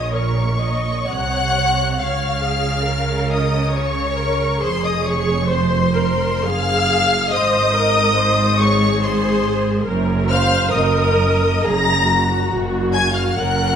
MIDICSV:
0, 0, Header, 1, 6, 480
1, 0, Start_track
1, 0, Key_signature, -5, "minor"
1, 0, Tempo, 955414
1, 554, Tempo, 877193
1, 1043, Time_signature, 3, 2, 24, 8
1, 2954, Tempo, 947867
1, 3434, Tempo, 884956
1, 3914, Tempo, 851064
1, 5834, Tempo, 914634
1, 6314, Tempo, 874636
1, 7475, End_track
2, 0, Start_track
2, 0, Title_t, "Violin section"
2, 0, Program_c, 0, 48
2, 0, Note_on_c, 0, 87, 82
2, 54, Note_off_c, 0, 87, 0
2, 72, Note_on_c, 0, 85, 87
2, 550, Note_on_c, 0, 90, 112
2, 555, Note_off_c, 0, 85, 0
2, 1041, Note_off_c, 0, 90, 0
2, 1051, Note_on_c, 0, 89, 102
2, 1766, Note_off_c, 0, 89, 0
2, 1770, Note_on_c, 0, 87, 95
2, 1998, Note_off_c, 0, 87, 0
2, 2011, Note_on_c, 0, 85, 96
2, 2479, Note_off_c, 0, 85, 0
2, 2479, Note_on_c, 0, 84, 119
2, 2596, Note_off_c, 0, 84, 0
2, 2602, Note_on_c, 0, 87, 102
2, 2717, Note_off_c, 0, 87, 0
2, 2724, Note_on_c, 0, 85, 104
2, 2961, Note_off_c, 0, 85, 0
2, 2968, Note_on_c, 0, 84, 97
2, 3441, Note_on_c, 0, 89, 127
2, 3442, Note_off_c, 0, 84, 0
2, 3919, Note_off_c, 0, 89, 0
2, 3921, Note_on_c, 0, 87, 127
2, 4625, Note_off_c, 0, 87, 0
2, 4638, Note_on_c, 0, 85, 124
2, 4868, Note_on_c, 0, 84, 103
2, 4878, Note_off_c, 0, 85, 0
2, 5349, Note_off_c, 0, 84, 0
2, 5589, Note_on_c, 0, 89, 126
2, 5817, Note_off_c, 0, 89, 0
2, 5833, Note_on_c, 0, 87, 101
2, 6315, Note_off_c, 0, 87, 0
2, 6318, Note_on_c, 0, 94, 127
2, 6792, Note_off_c, 0, 94, 0
2, 7021, Note_on_c, 0, 92, 116
2, 7134, Note_off_c, 0, 92, 0
2, 7142, Note_on_c, 0, 89, 101
2, 7264, Note_off_c, 0, 89, 0
2, 7264, Note_on_c, 0, 90, 119
2, 7475, Note_off_c, 0, 90, 0
2, 7475, End_track
3, 0, Start_track
3, 0, Title_t, "Violin section"
3, 0, Program_c, 1, 48
3, 0, Note_on_c, 1, 75, 89
3, 54, Note_off_c, 1, 75, 0
3, 67, Note_on_c, 1, 73, 69
3, 550, Note_on_c, 1, 78, 112
3, 553, Note_off_c, 1, 73, 0
3, 1031, Note_off_c, 1, 78, 0
3, 1041, Note_on_c, 1, 77, 84
3, 1760, Note_on_c, 1, 75, 79
3, 1761, Note_off_c, 1, 77, 0
3, 1998, Note_off_c, 1, 75, 0
3, 2002, Note_on_c, 1, 73, 99
3, 2475, Note_off_c, 1, 73, 0
3, 2481, Note_on_c, 1, 72, 92
3, 2595, Note_off_c, 1, 72, 0
3, 2596, Note_on_c, 1, 75, 85
3, 2714, Note_off_c, 1, 75, 0
3, 2714, Note_on_c, 1, 73, 90
3, 2956, Note_off_c, 1, 73, 0
3, 2957, Note_on_c, 1, 72, 87
3, 3436, Note_off_c, 1, 72, 0
3, 3445, Note_on_c, 1, 77, 120
3, 3918, Note_on_c, 1, 75, 112
3, 3921, Note_off_c, 1, 77, 0
3, 4639, Note_off_c, 1, 75, 0
3, 4645, Note_on_c, 1, 73, 94
3, 4877, Note_off_c, 1, 73, 0
3, 4882, Note_on_c, 1, 72, 103
3, 5356, Note_off_c, 1, 72, 0
3, 5602, Note_on_c, 1, 77, 113
3, 5824, Note_off_c, 1, 77, 0
3, 5840, Note_on_c, 1, 75, 85
3, 6309, Note_off_c, 1, 75, 0
3, 6322, Note_on_c, 1, 82, 119
3, 6794, Note_off_c, 1, 82, 0
3, 7024, Note_on_c, 1, 80, 112
3, 7135, Note_off_c, 1, 80, 0
3, 7138, Note_on_c, 1, 77, 85
3, 7260, Note_off_c, 1, 77, 0
3, 7270, Note_on_c, 1, 78, 98
3, 7475, Note_off_c, 1, 78, 0
3, 7475, End_track
4, 0, Start_track
4, 0, Title_t, "Viola section"
4, 0, Program_c, 2, 48
4, 61, Note_on_c, 2, 70, 68
4, 299, Note_on_c, 2, 75, 73
4, 307, Note_off_c, 2, 70, 0
4, 543, Note_off_c, 2, 75, 0
4, 546, Note_on_c, 2, 73, 68
4, 1036, Note_off_c, 2, 73, 0
4, 1042, Note_on_c, 2, 73, 79
4, 1280, Note_off_c, 2, 73, 0
4, 1281, Note_on_c, 2, 68, 74
4, 1518, Note_off_c, 2, 68, 0
4, 1522, Note_on_c, 2, 70, 74
4, 1989, Note_on_c, 2, 73, 75
4, 1998, Note_off_c, 2, 70, 0
4, 2230, Note_off_c, 2, 73, 0
4, 2233, Note_on_c, 2, 70, 85
4, 2470, Note_on_c, 2, 68, 91
4, 2472, Note_off_c, 2, 70, 0
4, 2951, Note_on_c, 2, 72, 93
4, 2954, Note_off_c, 2, 68, 0
4, 3186, Note_off_c, 2, 72, 0
4, 3192, Note_on_c, 2, 70, 84
4, 3435, Note_off_c, 2, 70, 0
4, 3438, Note_on_c, 2, 68, 88
4, 3912, Note_on_c, 2, 72, 92
4, 3917, Note_off_c, 2, 68, 0
4, 4152, Note_off_c, 2, 72, 0
4, 4159, Note_on_c, 2, 70, 92
4, 4391, Note_on_c, 2, 72, 88
4, 4398, Note_off_c, 2, 70, 0
4, 4633, Note_off_c, 2, 72, 0
4, 4637, Note_on_c, 2, 68, 98
4, 5352, Note_on_c, 2, 70, 90
4, 5354, Note_off_c, 2, 68, 0
4, 5588, Note_off_c, 2, 70, 0
4, 5592, Note_on_c, 2, 72, 107
4, 5829, Note_on_c, 2, 70, 110
4, 5836, Note_off_c, 2, 72, 0
4, 6313, Note_off_c, 2, 70, 0
4, 6319, Note_on_c, 2, 68, 90
4, 6555, Note_on_c, 2, 66, 88
4, 6559, Note_off_c, 2, 68, 0
4, 7264, Note_off_c, 2, 66, 0
4, 7267, Note_on_c, 2, 70, 93
4, 7475, Note_off_c, 2, 70, 0
4, 7475, End_track
5, 0, Start_track
5, 0, Title_t, "Cello section"
5, 0, Program_c, 3, 48
5, 0, Note_on_c, 3, 46, 72
5, 535, Note_off_c, 3, 46, 0
5, 554, Note_on_c, 3, 48, 64
5, 1043, Note_off_c, 3, 48, 0
5, 1043, Note_on_c, 3, 49, 79
5, 2472, Note_on_c, 3, 41, 88
5, 2473, Note_off_c, 3, 49, 0
5, 3435, Note_off_c, 3, 41, 0
5, 3438, Note_on_c, 3, 42, 78
5, 3917, Note_off_c, 3, 42, 0
5, 3919, Note_on_c, 3, 44, 94
5, 5352, Note_on_c, 3, 42, 112
5, 5355, Note_off_c, 3, 44, 0
5, 5779, Note_off_c, 3, 42, 0
5, 5834, Note_on_c, 3, 42, 93
5, 6259, Note_off_c, 3, 42, 0
5, 6315, Note_on_c, 3, 42, 89
5, 6735, Note_off_c, 3, 42, 0
5, 6793, Note_on_c, 3, 42, 97
5, 7209, Note_off_c, 3, 42, 0
5, 7262, Note_on_c, 3, 42, 102
5, 7475, Note_off_c, 3, 42, 0
5, 7475, End_track
6, 0, Start_track
6, 0, Title_t, "Double bass section"
6, 0, Program_c, 4, 48
6, 0, Note_on_c, 4, 34, 80
6, 534, Note_off_c, 4, 34, 0
6, 556, Note_on_c, 4, 36, 73
6, 1041, Note_on_c, 4, 37, 75
6, 1044, Note_off_c, 4, 36, 0
6, 2470, Note_on_c, 4, 29, 86
6, 2472, Note_off_c, 4, 37, 0
6, 3434, Note_off_c, 4, 29, 0
6, 3446, Note_on_c, 4, 30, 81
6, 3921, Note_off_c, 4, 30, 0
6, 3925, Note_on_c, 4, 32, 88
6, 5355, Note_on_c, 4, 30, 107
6, 5358, Note_off_c, 4, 32, 0
6, 5780, Note_off_c, 4, 30, 0
6, 5836, Note_on_c, 4, 30, 93
6, 6260, Note_off_c, 4, 30, 0
6, 6314, Note_on_c, 4, 30, 106
6, 6735, Note_off_c, 4, 30, 0
6, 6791, Note_on_c, 4, 30, 99
6, 7208, Note_off_c, 4, 30, 0
6, 7259, Note_on_c, 4, 30, 95
6, 7475, Note_off_c, 4, 30, 0
6, 7475, End_track
0, 0, End_of_file